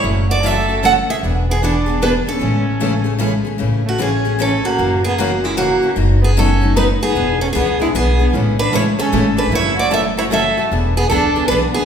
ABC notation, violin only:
X:1
M:3/4
L:1/16
Q:"Swing" 1/4=152
K:A
V:1 name="Violin"
z2 F2 A4 A2 G2 | z2 B,2 D4 D2 C2- | C8 z4 | z2 A,2 C4 C2 _B,2- |
_B,2 =B,2 ^A,2 G,2 A,3 z | z2 B,2 C4 ^D2 B,2- | B,2 C2 B,2 G,2 B,3 z | z2 D2 E2 C4 D2 |
E2 F2 A2 E2 A3 z | z2 B,2 D4 D2 B,2 |]